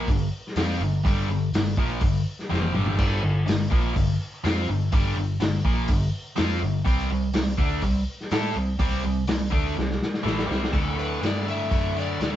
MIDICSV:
0, 0, Header, 1, 5, 480
1, 0, Start_track
1, 0, Tempo, 485437
1, 1035, Time_signature, 4, 2, 24, 8
1, 12222, End_track
2, 0, Start_track
2, 0, Title_t, "Electric slide guitar"
2, 0, Program_c, 0, 29
2, 10619, Note_on_c, 0, 69, 81
2, 10843, Note_off_c, 0, 69, 0
2, 10873, Note_on_c, 0, 71, 84
2, 11116, Note_off_c, 0, 71, 0
2, 11125, Note_on_c, 0, 74, 80
2, 11362, Note_off_c, 0, 74, 0
2, 11374, Note_on_c, 0, 76, 100
2, 11856, Note_off_c, 0, 76, 0
2, 11867, Note_on_c, 0, 74, 84
2, 12076, Note_off_c, 0, 74, 0
2, 12088, Note_on_c, 0, 74, 83
2, 12150, Note_off_c, 0, 74, 0
2, 12222, End_track
3, 0, Start_track
3, 0, Title_t, "Overdriven electric guitar"
3, 0, Program_c, 1, 29
3, 91, Note_on_c, 1, 43, 71
3, 98, Note_on_c, 1, 50, 84
3, 275, Note_off_c, 1, 43, 0
3, 278, Note_off_c, 1, 50, 0
3, 564, Note_on_c, 1, 53, 93
3, 575, Note_on_c, 1, 60, 91
3, 588, Note_on_c, 1, 65, 110
3, 792, Note_off_c, 1, 53, 0
3, 798, Note_off_c, 1, 60, 0
3, 804, Note_off_c, 1, 65, 0
3, 808, Note_on_c, 1, 43, 62
3, 813, Note_on_c, 1, 50, 70
3, 993, Note_off_c, 1, 43, 0
3, 996, Note_off_c, 1, 50, 0
3, 1035, Note_on_c, 1, 43, 95
3, 1044, Note_on_c, 1, 50, 89
3, 1057, Note_on_c, 1, 55, 114
3, 1268, Note_off_c, 1, 43, 0
3, 1273, Note_off_c, 1, 50, 0
3, 1279, Note_off_c, 1, 55, 0
3, 1283, Note_on_c, 1, 43, 72
3, 1292, Note_on_c, 1, 50, 81
3, 1471, Note_off_c, 1, 43, 0
3, 1476, Note_off_c, 1, 50, 0
3, 1531, Note_on_c, 1, 43, 61
3, 1531, Note_on_c, 1, 50, 72
3, 1715, Note_off_c, 1, 43, 0
3, 1715, Note_off_c, 1, 50, 0
3, 1757, Note_on_c, 1, 46, 78
3, 1764, Note_on_c, 1, 53, 94
3, 1769, Note_on_c, 1, 58, 93
3, 1989, Note_off_c, 1, 46, 0
3, 1992, Note_off_c, 1, 53, 0
3, 1995, Note_off_c, 1, 58, 0
3, 1998, Note_on_c, 1, 43, 69
3, 2002, Note_on_c, 1, 50, 82
3, 2188, Note_off_c, 1, 43, 0
3, 2191, Note_off_c, 1, 50, 0
3, 2466, Note_on_c, 1, 41, 85
3, 2472, Note_on_c, 1, 48, 96
3, 2484, Note_on_c, 1, 53, 99
3, 2701, Note_off_c, 1, 41, 0
3, 2705, Note_on_c, 1, 43, 85
3, 2706, Note_off_c, 1, 48, 0
3, 2711, Note_on_c, 1, 50, 90
3, 2712, Note_off_c, 1, 53, 0
3, 2718, Note_on_c, 1, 55, 80
3, 2927, Note_off_c, 1, 50, 0
3, 2928, Note_off_c, 1, 43, 0
3, 2938, Note_off_c, 1, 55, 0
3, 2939, Note_on_c, 1, 50, 91
3, 2940, Note_on_c, 1, 43, 80
3, 2950, Note_on_c, 1, 55, 102
3, 3166, Note_off_c, 1, 43, 0
3, 3172, Note_off_c, 1, 50, 0
3, 3178, Note_on_c, 1, 43, 78
3, 3183, Note_on_c, 1, 50, 80
3, 3184, Note_off_c, 1, 55, 0
3, 3377, Note_off_c, 1, 43, 0
3, 3380, Note_off_c, 1, 50, 0
3, 3422, Note_on_c, 1, 43, 64
3, 3429, Note_on_c, 1, 50, 71
3, 3619, Note_off_c, 1, 43, 0
3, 3623, Note_off_c, 1, 50, 0
3, 3658, Note_on_c, 1, 46, 89
3, 3671, Note_on_c, 1, 53, 89
3, 3672, Note_on_c, 1, 58, 84
3, 3890, Note_off_c, 1, 46, 0
3, 3894, Note_on_c, 1, 43, 68
3, 3902, Note_off_c, 1, 53, 0
3, 3905, Note_off_c, 1, 58, 0
3, 3906, Note_on_c, 1, 50, 82
3, 4094, Note_off_c, 1, 43, 0
3, 4101, Note_off_c, 1, 50, 0
3, 4389, Note_on_c, 1, 53, 87
3, 4398, Note_on_c, 1, 60, 81
3, 4400, Note_on_c, 1, 65, 99
3, 4622, Note_off_c, 1, 53, 0
3, 4626, Note_off_c, 1, 60, 0
3, 4627, Note_off_c, 1, 65, 0
3, 4633, Note_on_c, 1, 43, 60
3, 4636, Note_on_c, 1, 50, 66
3, 4823, Note_off_c, 1, 43, 0
3, 4825, Note_off_c, 1, 50, 0
3, 4866, Note_on_c, 1, 43, 91
3, 4879, Note_on_c, 1, 50, 91
3, 4888, Note_on_c, 1, 55, 106
3, 5099, Note_off_c, 1, 50, 0
3, 5100, Note_off_c, 1, 43, 0
3, 5110, Note_on_c, 1, 43, 70
3, 5110, Note_on_c, 1, 50, 73
3, 5111, Note_off_c, 1, 55, 0
3, 5301, Note_off_c, 1, 43, 0
3, 5301, Note_off_c, 1, 50, 0
3, 5340, Note_on_c, 1, 43, 68
3, 5347, Note_on_c, 1, 50, 73
3, 5535, Note_off_c, 1, 43, 0
3, 5539, Note_off_c, 1, 50, 0
3, 5582, Note_on_c, 1, 46, 83
3, 5587, Note_on_c, 1, 53, 80
3, 5592, Note_on_c, 1, 58, 82
3, 5817, Note_off_c, 1, 46, 0
3, 5819, Note_off_c, 1, 53, 0
3, 5821, Note_off_c, 1, 58, 0
3, 5823, Note_on_c, 1, 43, 69
3, 5830, Note_on_c, 1, 50, 78
3, 6016, Note_off_c, 1, 43, 0
3, 6020, Note_off_c, 1, 50, 0
3, 6289, Note_on_c, 1, 53, 82
3, 6299, Note_on_c, 1, 60, 92
3, 6305, Note_on_c, 1, 65, 107
3, 6529, Note_off_c, 1, 53, 0
3, 6534, Note_off_c, 1, 60, 0
3, 6534, Note_on_c, 1, 50, 66
3, 6537, Note_off_c, 1, 65, 0
3, 6537, Note_on_c, 1, 43, 57
3, 6730, Note_off_c, 1, 50, 0
3, 6732, Note_off_c, 1, 43, 0
3, 6768, Note_on_c, 1, 48, 105
3, 6774, Note_on_c, 1, 55, 103
3, 6783, Note_on_c, 1, 60, 102
3, 7008, Note_off_c, 1, 48, 0
3, 7011, Note_off_c, 1, 55, 0
3, 7015, Note_off_c, 1, 60, 0
3, 7025, Note_on_c, 1, 48, 73
3, 7030, Note_on_c, 1, 55, 75
3, 7215, Note_off_c, 1, 48, 0
3, 7218, Note_off_c, 1, 55, 0
3, 7259, Note_on_c, 1, 48, 60
3, 7264, Note_on_c, 1, 55, 70
3, 7452, Note_off_c, 1, 48, 0
3, 7454, Note_off_c, 1, 55, 0
3, 7493, Note_on_c, 1, 50, 85
3, 7493, Note_on_c, 1, 57, 96
3, 7499, Note_on_c, 1, 62, 96
3, 7729, Note_off_c, 1, 50, 0
3, 7729, Note_off_c, 1, 57, 0
3, 7732, Note_off_c, 1, 62, 0
3, 7734, Note_on_c, 1, 48, 69
3, 7741, Note_on_c, 1, 55, 70
3, 7929, Note_off_c, 1, 48, 0
3, 7932, Note_off_c, 1, 55, 0
3, 8224, Note_on_c, 1, 57, 89
3, 8227, Note_on_c, 1, 64, 88
3, 8235, Note_on_c, 1, 69, 105
3, 8449, Note_on_c, 1, 48, 64
3, 8454, Note_off_c, 1, 57, 0
3, 8455, Note_off_c, 1, 64, 0
3, 8459, Note_off_c, 1, 69, 0
3, 8461, Note_on_c, 1, 55, 72
3, 8646, Note_off_c, 1, 48, 0
3, 8652, Note_off_c, 1, 55, 0
3, 8692, Note_on_c, 1, 48, 99
3, 8699, Note_on_c, 1, 55, 92
3, 8709, Note_on_c, 1, 60, 99
3, 8926, Note_off_c, 1, 48, 0
3, 8926, Note_off_c, 1, 55, 0
3, 8936, Note_off_c, 1, 60, 0
3, 8937, Note_on_c, 1, 48, 75
3, 8938, Note_on_c, 1, 55, 74
3, 9130, Note_off_c, 1, 48, 0
3, 9130, Note_off_c, 1, 55, 0
3, 9174, Note_on_c, 1, 48, 69
3, 9179, Note_on_c, 1, 55, 74
3, 9368, Note_off_c, 1, 48, 0
3, 9371, Note_off_c, 1, 55, 0
3, 9396, Note_on_c, 1, 50, 89
3, 9413, Note_on_c, 1, 57, 82
3, 9417, Note_on_c, 1, 62, 99
3, 9640, Note_off_c, 1, 50, 0
3, 9649, Note_off_c, 1, 57, 0
3, 9651, Note_off_c, 1, 62, 0
3, 9655, Note_on_c, 1, 48, 66
3, 9658, Note_on_c, 1, 55, 64
3, 9849, Note_off_c, 1, 48, 0
3, 9850, Note_off_c, 1, 55, 0
3, 10118, Note_on_c, 1, 45, 80
3, 10120, Note_on_c, 1, 52, 103
3, 10130, Note_on_c, 1, 57, 109
3, 10339, Note_off_c, 1, 45, 0
3, 10343, Note_on_c, 1, 48, 82
3, 10347, Note_off_c, 1, 52, 0
3, 10351, Note_on_c, 1, 55, 79
3, 10357, Note_off_c, 1, 57, 0
3, 10361, Note_on_c, 1, 60, 98
3, 10594, Note_off_c, 1, 48, 0
3, 10598, Note_on_c, 1, 38, 96
3, 10599, Note_off_c, 1, 55, 0
3, 10604, Note_off_c, 1, 60, 0
3, 10613, Note_on_c, 1, 45, 83
3, 10616, Note_on_c, 1, 50, 90
3, 10826, Note_off_c, 1, 38, 0
3, 10833, Note_off_c, 1, 45, 0
3, 10838, Note_on_c, 1, 38, 82
3, 10840, Note_off_c, 1, 50, 0
3, 10845, Note_on_c, 1, 45, 90
3, 10852, Note_on_c, 1, 50, 78
3, 11072, Note_off_c, 1, 38, 0
3, 11080, Note_off_c, 1, 45, 0
3, 11083, Note_on_c, 1, 38, 88
3, 11089, Note_off_c, 1, 50, 0
3, 11092, Note_on_c, 1, 45, 88
3, 11100, Note_on_c, 1, 50, 99
3, 11324, Note_off_c, 1, 38, 0
3, 11332, Note_off_c, 1, 45, 0
3, 11334, Note_off_c, 1, 50, 0
3, 11336, Note_on_c, 1, 38, 72
3, 11344, Note_on_c, 1, 45, 70
3, 11346, Note_on_c, 1, 50, 79
3, 11556, Note_off_c, 1, 38, 0
3, 11561, Note_off_c, 1, 45, 0
3, 11567, Note_on_c, 1, 38, 82
3, 11569, Note_off_c, 1, 50, 0
3, 11572, Note_on_c, 1, 45, 91
3, 11581, Note_on_c, 1, 50, 106
3, 11804, Note_off_c, 1, 38, 0
3, 11809, Note_off_c, 1, 45, 0
3, 11816, Note_on_c, 1, 38, 70
3, 11818, Note_off_c, 1, 50, 0
3, 11821, Note_on_c, 1, 45, 77
3, 11830, Note_on_c, 1, 50, 82
3, 12058, Note_off_c, 1, 38, 0
3, 12063, Note_off_c, 1, 45, 0
3, 12069, Note_on_c, 1, 38, 77
3, 12070, Note_off_c, 1, 50, 0
3, 12075, Note_on_c, 1, 45, 80
3, 12082, Note_on_c, 1, 50, 94
3, 12222, Note_off_c, 1, 38, 0
3, 12222, Note_off_c, 1, 45, 0
3, 12222, Note_off_c, 1, 50, 0
3, 12222, End_track
4, 0, Start_track
4, 0, Title_t, "Picked electric bass"
4, 0, Program_c, 2, 34
4, 75, Note_on_c, 2, 31, 78
4, 298, Note_off_c, 2, 31, 0
4, 556, Note_on_c, 2, 41, 86
4, 779, Note_off_c, 2, 41, 0
4, 796, Note_on_c, 2, 31, 75
4, 1019, Note_off_c, 2, 31, 0
4, 1041, Note_on_c, 2, 31, 84
4, 1262, Note_off_c, 2, 31, 0
4, 1275, Note_on_c, 2, 31, 83
4, 1499, Note_off_c, 2, 31, 0
4, 1512, Note_on_c, 2, 31, 82
4, 1737, Note_off_c, 2, 31, 0
4, 1757, Note_on_c, 2, 34, 95
4, 1979, Note_off_c, 2, 34, 0
4, 1999, Note_on_c, 2, 31, 73
4, 2220, Note_off_c, 2, 31, 0
4, 2482, Note_on_c, 2, 29, 88
4, 2702, Note_off_c, 2, 29, 0
4, 2710, Note_on_c, 2, 31, 93
4, 2935, Note_off_c, 2, 31, 0
4, 2953, Note_on_c, 2, 31, 89
4, 3176, Note_off_c, 2, 31, 0
4, 3193, Note_on_c, 2, 31, 85
4, 3416, Note_off_c, 2, 31, 0
4, 3435, Note_on_c, 2, 31, 82
4, 3657, Note_off_c, 2, 31, 0
4, 3673, Note_on_c, 2, 34, 95
4, 3896, Note_off_c, 2, 34, 0
4, 3917, Note_on_c, 2, 31, 72
4, 4137, Note_off_c, 2, 31, 0
4, 4394, Note_on_c, 2, 41, 101
4, 4615, Note_off_c, 2, 41, 0
4, 4625, Note_on_c, 2, 31, 74
4, 4850, Note_off_c, 2, 31, 0
4, 4874, Note_on_c, 2, 31, 96
4, 5094, Note_off_c, 2, 31, 0
4, 5109, Note_on_c, 2, 31, 92
4, 5331, Note_off_c, 2, 31, 0
4, 5349, Note_on_c, 2, 31, 86
4, 5571, Note_off_c, 2, 31, 0
4, 5580, Note_on_c, 2, 34, 75
4, 5806, Note_off_c, 2, 34, 0
4, 5823, Note_on_c, 2, 31, 75
4, 6047, Note_off_c, 2, 31, 0
4, 6314, Note_on_c, 2, 41, 88
4, 6532, Note_off_c, 2, 41, 0
4, 6553, Note_on_c, 2, 31, 81
4, 6771, Note_off_c, 2, 31, 0
4, 6784, Note_on_c, 2, 36, 94
4, 7006, Note_off_c, 2, 36, 0
4, 7025, Note_on_c, 2, 36, 96
4, 7246, Note_off_c, 2, 36, 0
4, 7263, Note_on_c, 2, 36, 81
4, 7485, Note_off_c, 2, 36, 0
4, 7498, Note_on_c, 2, 38, 83
4, 7722, Note_off_c, 2, 38, 0
4, 7744, Note_on_c, 2, 36, 78
4, 7965, Note_off_c, 2, 36, 0
4, 8224, Note_on_c, 2, 45, 92
4, 8444, Note_off_c, 2, 45, 0
4, 8463, Note_on_c, 2, 36, 81
4, 8684, Note_off_c, 2, 36, 0
4, 8693, Note_on_c, 2, 36, 102
4, 8918, Note_off_c, 2, 36, 0
4, 8949, Note_on_c, 2, 36, 88
4, 9167, Note_off_c, 2, 36, 0
4, 9186, Note_on_c, 2, 36, 80
4, 9405, Note_off_c, 2, 36, 0
4, 9423, Note_on_c, 2, 38, 81
4, 9644, Note_off_c, 2, 38, 0
4, 9660, Note_on_c, 2, 36, 79
4, 9883, Note_off_c, 2, 36, 0
4, 10137, Note_on_c, 2, 33, 98
4, 10361, Note_off_c, 2, 33, 0
4, 10375, Note_on_c, 2, 36, 84
4, 10601, Note_off_c, 2, 36, 0
4, 10616, Note_on_c, 2, 38, 86
4, 11086, Note_off_c, 2, 38, 0
4, 11098, Note_on_c, 2, 43, 85
4, 11568, Note_off_c, 2, 43, 0
4, 11582, Note_on_c, 2, 42, 69
4, 12052, Note_off_c, 2, 42, 0
4, 12059, Note_on_c, 2, 38, 71
4, 12222, Note_off_c, 2, 38, 0
4, 12222, End_track
5, 0, Start_track
5, 0, Title_t, "Drums"
5, 77, Note_on_c, 9, 46, 61
5, 79, Note_on_c, 9, 36, 98
5, 176, Note_off_c, 9, 46, 0
5, 178, Note_off_c, 9, 36, 0
5, 466, Note_on_c, 9, 38, 32
5, 552, Note_on_c, 9, 46, 64
5, 565, Note_off_c, 9, 38, 0
5, 568, Note_on_c, 9, 38, 107
5, 650, Note_off_c, 9, 46, 0
5, 667, Note_off_c, 9, 38, 0
5, 1037, Note_on_c, 9, 36, 107
5, 1040, Note_on_c, 9, 46, 56
5, 1136, Note_off_c, 9, 36, 0
5, 1139, Note_off_c, 9, 46, 0
5, 1519, Note_on_c, 9, 46, 66
5, 1536, Note_on_c, 9, 38, 118
5, 1618, Note_off_c, 9, 46, 0
5, 1635, Note_off_c, 9, 38, 0
5, 1754, Note_on_c, 9, 36, 103
5, 1853, Note_off_c, 9, 36, 0
5, 1984, Note_on_c, 9, 46, 57
5, 1992, Note_on_c, 9, 36, 100
5, 2082, Note_off_c, 9, 46, 0
5, 2091, Note_off_c, 9, 36, 0
5, 2365, Note_on_c, 9, 38, 31
5, 2463, Note_off_c, 9, 38, 0
5, 2500, Note_on_c, 9, 38, 63
5, 2586, Note_on_c, 9, 48, 71
5, 2599, Note_off_c, 9, 38, 0
5, 2684, Note_off_c, 9, 48, 0
5, 2713, Note_on_c, 9, 45, 78
5, 2812, Note_off_c, 9, 45, 0
5, 2827, Note_on_c, 9, 43, 92
5, 2926, Note_off_c, 9, 43, 0
5, 2952, Note_on_c, 9, 49, 81
5, 2954, Note_on_c, 9, 36, 98
5, 3051, Note_off_c, 9, 49, 0
5, 3053, Note_off_c, 9, 36, 0
5, 3437, Note_on_c, 9, 46, 63
5, 3454, Note_on_c, 9, 38, 113
5, 3536, Note_off_c, 9, 46, 0
5, 3552, Note_off_c, 9, 38, 0
5, 3677, Note_on_c, 9, 36, 107
5, 3776, Note_off_c, 9, 36, 0
5, 3917, Note_on_c, 9, 36, 92
5, 3917, Note_on_c, 9, 46, 60
5, 4016, Note_off_c, 9, 36, 0
5, 4016, Note_off_c, 9, 46, 0
5, 4397, Note_on_c, 9, 46, 64
5, 4414, Note_on_c, 9, 38, 117
5, 4496, Note_off_c, 9, 46, 0
5, 4512, Note_off_c, 9, 38, 0
5, 4864, Note_on_c, 9, 46, 59
5, 4872, Note_on_c, 9, 36, 113
5, 4963, Note_off_c, 9, 46, 0
5, 4971, Note_off_c, 9, 36, 0
5, 5343, Note_on_c, 9, 46, 74
5, 5360, Note_on_c, 9, 38, 121
5, 5442, Note_off_c, 9, 46, 0
5, 5458, Note_off_c, 9, 38, 0
5, 5584, Note_on_c, 9, 36, 89
5, 5683, Note_off_c, 9, 36, 0
5, 5812, Note_on_c, 9, 46, 62
5, 5822, Note_on_c, 9, 36, 103
5, 5911, Note_off_c, 9, 46, 0
5, 5921, Note_off_c, 9, 36, 0
5, 6290, Note_on_c, 9, 46, 61
5, 6307, Note_on_c, 9, 38, 122
5, 6389, Note_off_c, 9, 46, 0
5, 6406, Note_off_c, 9, 38, 0
5, 6782, Note_on_c, 9, 36, 99
5, 6786, Note_on_c, 9, 46, 55
5, 6881, Note_off_c, 9, 36, 0
5, 6885, Note_off_c, 9, 46, 0
5, 7252, Note_on_c, 9, 46, 64
5, 7269, Note_on_c, 9, 38, 116
5, 7351, Note_off_c, 9, 46, 0
5, 7368, Note_off_c, 9, 38, 0
5, 7498, Note_on_c, 9, 36, 104
5, 7597, Note_off_c, 9, 36, 0
5, 7727, Note_on_c, 9, 46, 56
5, 7737, Note_on_c, 9, 36, 86
5, 7826, Note_off_c, 9, 46, 0
5, 7836, Note_off_c, 9, 36, 0
5, 8115, Note_on_c, 9, 38, 33
5, 8214, Note_off_c, 9, 38, 0
5, 8216, Note_on_c, 9, 46, 58
5, 8233, Note_on_c, 9, 38, 119
5, 8315, Note_off_c, 9, 46, 0
5, 8332, Note_off_c, 9, 38, 0
5, 8694, Note_on_c, 9, 46, 56
5, 8697, Note_on_c, 9, 36, 89
5, 8793, Note_off_c, 9, 46, 0
5, 8796, Note_off_c, 9, 36, 0
5, 9169, Note_on_c, 9, 46, 63
5, 9186, Note_on_c, 9, 38, 115
5, 9268, Note_off_c, 9, 46, 0
5, 9285, Note_off_c, 9, 38, 0
5, 9417, Note_on_c, 9, 36, 92
5, 9516, Note_off_c, 9, 36, 0
5, 9680, Note_on_c, 9, 38, 69
5, 9779, Note_off_c, 9, 38, 0
5, 9797, Note_on_c, 9, 38, 61
5, 9896, Note_off_c, 9, 38, 0
5, 9913, Note_on_c, 9, 38, 82
5, 10012, Note_off_c, 9, 38, 0
5, 10028, Note_on_c, 9, 38, 64
5, 10127, Note_off_c, 9, 38, 0
5, 10152, Note_on_c, 9, 38, 90
5, 10251, Note_off_c, 9, 38, 0
5, 10271, Note_on_c, 9, 38, 86
5, 10369, Note_off_c, 9, 38, 0
5, 10397, Note_on_c, 9, 38, 84
5, 10496, Note_off_c, 9, 38, 0
5, 10522, Note_on_c, 9, 38, 88
5, 10615, Note_on_c, 9, 36, 98
5, 10616, Note_on_c, 9, 46, 51
5, 10621, Note_off_c, 9, 38, 0
5, 10713, Note_off_c, 9, 36, 0
5, 10714, Note_off_c, 9, 46, 0
5, 10867, Note_on_c, 9, 46, 42
5, 10966, Note_off_c, 9, 46, 0
5, 11104, Note_on_c, 9, 46, 59
5, 11121, Note_on_c, 9, 38, 111
5, 11203, Note_off_c, 9, 46, 0
5, 11220, Note_off_c, 9, 38, 0
5, 11351, Note_on_c, 9, 46, 47
5, 11450, Note_off_c, 9, 46, 0
5, 11582, Note_on_c, 9, 36, 100
5, 11583, Note_on_c, 9, 46, 64
5, 11681, Note_off_c, 9, 36, 0
5, 11682, Note_off_c, 9, 46, 0
5, 11832, Note_on_c, 9, 46, 47
5, 11931, Note_off_c, 9, 46, 0
5, 12069, Note_on_c, 9, 46, 62
5, 12085, Note_on_c, 9, 38, 97
5, 12167, Note_off_c, 9, 46, 0
5, 12184, Note_off_c, 9, 38, 0
5, 12222, End_track
0, 0, End_of_file